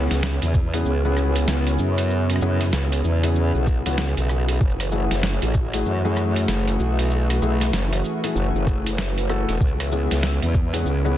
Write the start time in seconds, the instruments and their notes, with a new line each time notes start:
Already playing: analog synth pad C#3 B3 E4 G#4, grand piano B3 C#4 E4 G#4, ambient pad C#4 F#4 B4 E5
0.11 wobble bass C#2, snare, closed hi-hat, shaker
0.23 snare, shaker
0.42 wobble bass E2, closed hi-hat, shaker
0.54 kick, shaker
0.74 grand piano B3 C#4 E4 G#4, closed hi-hat, shaker
0.85 wobble bass C#2, shaker
1.05 grand piano B3 C#4 E4 G#4, shaker
1.17 cross-stick, shaker
1.36 closed hi-hat, shaker
1.48 wobble bass C#2, snare, shaker
1.67 closed hi-hat, shaker
1.79 wobble bass F#2, shaker
1.98 closed hi-hat, shaker
2.10 shaker
2.30 closed hi-hat, shaker
2.36 cross-stick
2.41 wobble bass F#2, grand piano B3 C#4 E4 G#4, shaker
2.61 snare, closed hi-hat, shaker
2.73 wobble bass C#2, snare, shaker
2.92 closed hi-hat, shaker
3.04 wobble bass E2, shaker
3.23 grand piano B3 C#4 E4 G#4, closed hi-hat, shaker
3.36 shaker
3.55 wobble bass B1, shaker
3.67 kick, shaker
3.86 wobble bass C#2, grand piano B3 C#4 E4 F#4, closed hi-hat
3.92 shaker
3.98 snare, shaker
4.17 wobble bass B1, closed hi-hat, shaker
4.29 cross-stick, shaker
4.49 closed hi-hat, shaker
4.55 shaker
4.61 wobble bass F#1, analog synth pad E3 A3 F#4, kick, shaker
4.70 shaker
4.80 cross-stick, closed hi-hat, shaker
4.92 grand piano A3 E4 F#4 G#4, shaker
5.11 wobble bass F#1, snare, closed hi-hat, shaker
5.23 snare, shaker
5.42 wobble bass A1, closed hi-hat, shaker
5.54 kick, shaker
5.73 grand piano A3 E4 F#4 G#4, closed hi-hat, shaker
5.86 wobble bass F#2, shaker
6.05 grand piano A3 E4 F#4 G#4, shaker
6.17 cross-stick, shaker
6.36 closed hi-hat, shaker
6.48 wobble bass F#1, snare, shaker
6.68 closed hi-hat, shaker
6.79 wobble bass B1, shaker
6.99 closed hi-hat, shaker
7.11 shaker
7.30 cross-stick, closed hi-hat, shaker
7.42 wobble bass B1, grand piano A3 E4 F#4 G#4, shaker
7.61 snare, closed hi-hat, shaker
7.73 wobble bass F#1, snare, shaker
7.93 closed hi-hat, shaker
8.05 shaker
8.24 grand piano A3 E4 F#4 G#4, closed hi-hat
8.35 wobble bass F#1, shaker
8.55 wobble bass F#1, shaker
8.67 grand piano A3 E4 F#4 G#4, kick, shaker
8.86 closed hi-hat, shaker
8.98 snare, shaker
9.18 closed hi-hat, shaker
9.30 grand piano A3 E4 F#4 A4, cross-stick, shaker
9.49 wobble bass E1, closed hi-hat, shaker
9.57 wobble bass C#2, analog synth pad C#3 G#3 B3 E4, kick, shaker
9.61 ambient pad C#4, shaker
9.67 shaker
9.80 cross-stick, closed hi-hat, shaker
9.92 grand piano B3 C#4 E4 G#4, shaker
10.11 wobble bass C#2, snare, closed hi-hat, shaker
10.23 snare, shaker
10.42 wobble bass E2, closed hi-hat, shaker
10.54 kick, shaker
10.73 grand piano B3 C#4 E4 G#4, closed hi-hat, shaker
10.86 wobble bass C#2, shaker
11.05 grand piano B3 C#4 E4 G#4, shaker